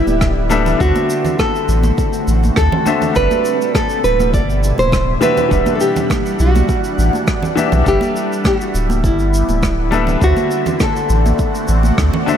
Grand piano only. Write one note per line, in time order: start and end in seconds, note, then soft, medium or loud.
0.00 0.46 G3 medium
0.00 0.47 D4 medium
0.00 0.48 A4 medium
0.00 0.48 B4 medium
0.00 0.49 E5 medium
0.50 0.76 G3 medium
0.50 0.77 D4 medium
0.50 0.77 A4 medium
0.50 0.77 B4 medium
0.50 0.78 E5 medium
0.78 2.82 D3 medium
0.78 2.82 D4 medium
0.78 2.83 F#4 medium
0.78 2.83 C5 medium
0.83 2.84 E5 medium
2.85 3.12 D3 medium
2.85 3.12 D4 medium
2.85 3.13 F#4 medium
2.85 3.13 C5 medium
2.85 3.13 E5 medium
3.13 5.17 G3 medium
3.13 5.18 D4 medium
3.13 5.18 A4 medium
3.13 5.19 D5 medium
3.18 5.19 E5 medium
5.21 5.47 E3 medium
5.21 5.48 D4 medium
5.21 5.48 F#4 medium
5.21 5.48 G4 medium
5.21 5.49 E5 medium
5.49 7.53 E3 medium
5.49 7.54 G3 medium
5.49 7.53 D4 medium
5.49 7.54 F#5 medium
5.54 7.55 E5 medium
7.56 7.82 E3 medium
7.56 7.83 D4 medium
7.56 7.83 F#4 medium
7.56 7.83 G4 medium
7.56 7.84 E5 medium
7.84 9.88 G3 medium
7.84 9.88 D4 medium
7.84 9.89 A4 medium
7.84 9.90 B4 medium
7.89 9.90 E5 medium
9.91 10.18 G3 medium
9.91 10.18 D4 medium
9.91 10.18 A4 medium
9.91 10.19 B4 medium
9.91 10.19 E5 medium
10.19 12.23 D3 medium
10.19 12.24 D4 medium
10.19 12.24 F#4 medium
10.19 12.25 C5 medium
10.24 12.25 E5 medium
12.26 12.37 D3 medium
12.26 12.37 D4 medium
12.26 12.37 F#4 medium
12.26 12.37 C5 medium
12.26 12.37 E5 medium